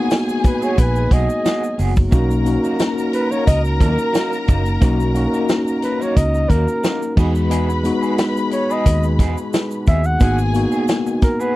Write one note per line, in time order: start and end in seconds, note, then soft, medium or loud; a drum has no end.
0.00 4.77 F#3 medium
0.00 2.09 G#3 medium
0.00 2.11 A#3 medium
0.00 2.14 B3 medium
0.00 2.13 D#4 medium
0.00 10.17 D#4 medium
0.00 2.14 F#4 loud
0.00 7.13 F#4 medium
0.00 1.74 G#4 loud
0.00 1.74 G#5 loud
0.10 muted clean electric guitar stroke soft
0.10 snare loud
0.10 closed hi-hat medium
0.10 shaker medium
0.28 muted clean electric guitar stroke soft
0.28 shaker medium
0.44 0.66 B4 medium
0.44 kick medium
0.44 closed hi-hat medium
0.44 shaker soft
0.62 0.78 B3 medium
0.62 0.77 F#4 medium
0.62 0.77 G#4 medium
0.62 0.81 C#5 medium
0.62 shaker soft
0.78 1.06 A#1 medium
0.78 1.14 B4 medium
0.78 kick medium
0.78 closed hi-hat loud
0.78 shaker medium
0.95 muted clean electric guitar stroke soft
0.95 shaker soft
1.11 1.27 B1 loud
1.11 1.29 B3 medium
1.11 1.29 F#4 medium
1.11 1.28 G#4 medium
1.11 1.80 D#5 loud
1.11 kick medium
1.11 closed hi-hat medium
1.11 shaker soft
1.29 muted clean electric guitar stroke soft
1.29 shaker soft
1.45 1.62 B3 medium
1.45 1.63 F#4 medium
1.45 1.62 G#4 medium
1.45 snare loud
1.45 closed hi-hat medium
1.45 shaker medium
1.63 muted clean electric guitar stroke soft
1.63 shaker medium
1.78 2.07 F#1 medium
1.78 1.92 B3 medium
1.78 1.92 F#4 medium
1.78 1.93 G#4 medium
1.78 open hi-hat medium
1.78 shaker medium
1.96 kick medium
1.96 shaker soft
2.11 2.56 B1 loud
2.11 2.29 F#3 medium
2.11 2.43 A#3 medium
2.11 7.13 A#3 medium
2.11 2.30 A#3 medium
2.11 2.43 C#4 medium
2.11 2.29 D#4 medium
2.11 2.43 D#4 medium
2.11 2.44 F#4 loud
2.11 6.79 A#4 loud
2.11 6.79 A#5 loud
2.11 kick loud
2.11 closed hi-hat loud
2.11 shaker medium
2.30 muted clean electric guitar stroke soft
2.30 shaker soft
2.45 3.69 A#3 medium
2.45 3.69 C#4 medium
2.45 3.69 D#4 medium
2.45 3.70 F#4 medium
2.45 muted clean electric guitar stroke soft
2.45 closed hi-hat medium
2.45 shaker soft
2.63 2.76 F#3 soft
2.63 2.76 A#3 medium
2.63 2.75 D#4 medium
2.63 shaker soft
2.79 muted clean electric guitar stroke soft
2.79 snare loud
2.79 closed hi-hat medium
2.79 shaker medium
2.97 muted clean electric guitar stroke soft
2.97 shaker medium
3.13 3.33 B4 medium
3.13 closed hi-hat medium
3.13 shaker soft
3.31 3.47 F#3 medium
3.31 3.46 A#3 medium
3.31 3.46 D#4 medium
3.31 3.47 C#5 medium
3.31 shaker soft
3.47 3.81 C#2 medium
3.47 3.62 D#5 loud
3.47 kick medium
3.47 closed hi-hat loud
3.47 shaker medium
3.65 muted clean electric guitar stroke soft
3.65 shaker soft
3.80 3.96 D#2 medium
3.80 4.01 F#3 medium
3.80 3.98 A#3 medium
3.80 3.97 D#4 medium
3.80 4.44 A#4 medium
3.80 kick medium
3.80 closed hi-hat medium
3.80 shaker soft
3.99 muted clean electric guitar stroke soft
3.99 shaker medium
4.13 4.31 F#3 medium
4.13 4.32 A#3 medium
4.13 4.31 D#4 medium
4.13 snare loud
4.13 closed hi-hat medium
4.13 shaker medium
4.32 muted clean electric guitar stroke soft
4.32 shaker medium
4.47 4.77 F#1 medium
4.47 4.61 F#3 medium
4.47 4.62 A#3 medium
4.47 4.62 D#4 medium
4.47 kick medium
4.47 closed hi-hat medium
4.47 shaker medium
4.66 muted clean electric guitar stroke soft
4.66 shaker soft
4.80 5.25 B1 loud
4.80 4.99 F#3 medium
4.80 5.12 A#3 medium
4.80 4.99 A#3 medium
4.80 7.15 C#4 medium
4.80 5.12 C#4 medium
4.80 5.13 D#4 medium
4.80 4.98 D#4 medium
4.80 5.13 F#4 loud
4.80 kick loud
4.80 closed hi-hat loud
4.80 shaker medium
5.00 muted clean electric guitar stroke soft
5.00 shaker medium
5.14 6.38 A#3 medium
5.14 6.38 C#4 medium
5.14 6.39 D#4 medium
5.14 6.39 F#4 medium
5.14 muted clean electric guitar stroke soft
5.14 closed hi-hat medium
5.14 shaker medium
5.33 5.46 F#3 soft
5.33 5.45 A#3 medium
5.33 5.45 D#4 medium
5.33 shaker soft
5.49 snare loud
5.49 closed hi-hat medium
5.49 shaker medium
5.67 muted clean electric guitar stroke medium
5.67 shaker medium
5.82 6.04 B4 medium
5.82 snare soft
5.82 closed hi-hat medium
5.82 shaker soft
6.00 6.16 F#3 medium
6.00 6.16 A#3 medium
6.00 6.15 D#4 medium
6.00 6.18 C#5 loud
6.00 shaker soft
6.17 6.45 C#2 loud
6.17 6.51 D#5 loud
6.17 kick medium
6.17 closed hi-hat loud
6.17 shaker medium
6.34 muted clean electric guitar stroke medium
6.34 shaker soft
6.50 6.65 D#2 loud
6.50 6.67 F#3 medium
6.50 6.67 A#3 medium
6.50 6.66 D#4 medium
6.50 7.17 A#4 loud
6.50 kick medium
6.50 closed hi-hat medium
6.50 shaker soft
6.68 shaker medium
6.83 7.01 F#3 medium
6.83 7.01 A#3 medium
6.83 7.00 D#4 medium
6.83 snare loud
6.83 closed hi-hat medium
6.83 shaker medium
7.01 muted clean electric guitar stroke soft
7.01 shaker medium
7.16 7.90 E2 loud
7.16 11.52 B2 medium
7.16 7.78 G#3 medium
7.16 10.18 G#3 medium
7.16 7.79 B3 medium
7.16 7.31 B3 medium
7.16 7.31 D#4 medium
7.16 7.79 D#4 medium
7.16 7.80 F#4 medium
7.16 10.18 G#4 medium
7.16 7.32 G#4 medium
7.16 9.83 B4 medium
7.16 9.83 B5 loud
7.16 kick loud
7.16 crash medium
7.16 shaker medium
7.35 shaker soft
7.50 7.68 B3 medium
7.50 7.68 D#4 medium
7.50 7.68 G#4 medium
7.50 closed hi-hat loud
7.50 shaker medium
7.69 muted clean electric guitar stroke soft
7.69 shaker soft
7.83 9.07 G#3 medium
7.83 9.08 B3 medium
7.83 9.08 D#4 medium
7.83 9.09 F#4 medium
7.83 muted clean electric guitar stroke soft
7.83 closed hi-hat medium
7.83 shaker soft
8.02 8.15 B3 soft
8.02 8.15 D#4 medium
8.02 8.14 G#4 medium
8.02 shaker soft
8.18 muted clean electric guitar stroke soft
8.18 snare loud
8.18 closed hi-hat medium
8.18 shaker medium
8.36 muted clean electric guitar stroke soft
8.36 shaker soft
8.51 8.73 C#5 medium
8.51 closed hi-hat medium
8.51 shaker soft
8.70 8.86 B3 medium
8.70 8.86 D#4 medium
8.70 8.85 G#4 medium
8.70 9.05 D#5 loud
8.70 shaker medium
8.86 9.19 D#2 medium
8.86 kick medium
8.86 closed hi-hat loud
8.86 shaker medium
9.03 muted clean electric guitar stroke soft
9.03 shaker soft
9.19 9.35 E2 medium
9.19 9.37 B3 medium
9.19 9.37 D#4 medium
9.19 9.37 G#4 medium
9.19 kick medium
9.19 snare soft
9.19 closed hi-hat medium
9.19 shaker soft
9.38 muted clean electric guitar stroke soft
9.38 shaker medium
9.53 muted clean electric guitar stroke soft
9.53 snare loud
9.53 closed hi-hat loud
9.53 shaker medium
9.71 shaker medium
9.87 10.16 D#2 medium
9.87 10.01 B3 medium
9.87 10.01 D#4 medium
9.87 10.01 G#4 medium
9.87 10.08 E5 loud
9.87 kick loud
9.87 closed hi-hat medium
9.87 shaker soft
10.04 10.40 F#5 loud
10.04 shaker soft
10.20 10.65 G#1 loud
10.20 11.55 D#3 medium
10.20 11.54 G#3 medium
10.20 10.51 A#3 medium
10.20 10.38 B3 medium
10.20 10.51 B3 medium
10.20 10.52 D#4 medium
10.20 10.38 F#4 medium
10.20 11.56 F#4 medium
10.20 10.52 F#4 medium
10.20 11.20 G#4 medium
10.20 10.38 G#4 medium
10.20 11.19 G#5 loud
10.20 kick loud
10.20 closed hi-hat loud
10.20 shaker medium
10.38 muted clean electric guitar stroke soft
10.38 shaker medium
10.53 11.53 A#3 medium
10.53 11.56 B3 medium
10.53 11.56 D#4 medium
10.53 11.56 F#4 loud
10.53 muted clean electric guitar stroke soft
10.53 closed hi-hat medium
10.53 shaker soft
10.72 10.85 B3 soft
10.72 10.84 F#4 medium
10.72 10.84 G#4 medium
10.72 shaker soft
10.88 muted clean electric guitar stroke soft
10.88 snare loud
10.88 closed hi-hat medium
10.88 shaker medium
11.06 muted clean electric guitar stroke soft
11.06 shaker soft
11.22 11.42 A#4 medium
11.22 kick medium
11.22 snare soft
11.22 closed hi-hat medium
11.22 shaker soft
11.40 11.56 B3 medium
11.40 11.55 F#4 medium
11.40 11.55 G#4 medium
11.40 11.56 B4 loud
11.40 shaker medium